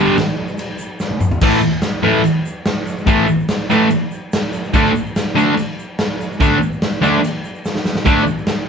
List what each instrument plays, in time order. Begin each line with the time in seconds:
Already playing: distorted electric guitar G2
0.00 distorted electric guitar D3 G3
0.06 shaker
0.17 snare, crash, shaker
0.48 shaker
0.58 crash, shaker
0.78 shaker
1.00 snare, shaker
1.11 high tom
1.21 mid tom, shaker
1.31 floor tom
1.41 distorted electric guitar A2 E3 A3, kick, crash, shaker
1.52 shaker
1.60 shaker
1.72 shaker
1.82 snare, crash, shaker
2.03 distorted electric guitar A2 E3 A3
2.24 crash, shaker
2.46 shaker
2.65 snare, crash, shaker
2.87 shaker
2.98 shaker
3.06 distorted electric guitar A2 E3 A3, kick, crash, shaker
3.28 shaker
3.40 shaker
3.49 snare, crash, shaker
3.70 distorted electric guitar A2 E3 A3, shaker
3.90 crash, shaker
4.11 shaker
4.33 snare, crash, shaker
4.53 shaker
4.64 shaker
4.74 distorted electric guitar D3 A3 D4, kick, crash, shaker
4.85 shaker
4.95 shaker
5.06 shaker
5.16 snare, crash, shaker
5.35 distorted electric guitar D3 A3 D4, shaker
5.57 crash, shaker
5.79 shaker
5.99 snare, crash, shaker
6.21 shaker
6.32 shaker
6.40 distorted electric guitar D3 A3 D4, kick, crash, shaker
6.62 shaker
6.72 shaker
6.82 snare, crash, shaker
7.01 distorted electric guitar D3 A3 D4, shaker
7.24 crash, shaker
7.44 shaker
7.55 shaker
7.65 snare, shaker
7.76 snare, shaker
7.85 snare, shaker
7.95 snare, shaker
8.05 distorted electric guitar D3 A3 D4, kick, crash, shaker
8.17 shaker
8.27 shaker
8.38 shaker
8.47 snare, crash, shaker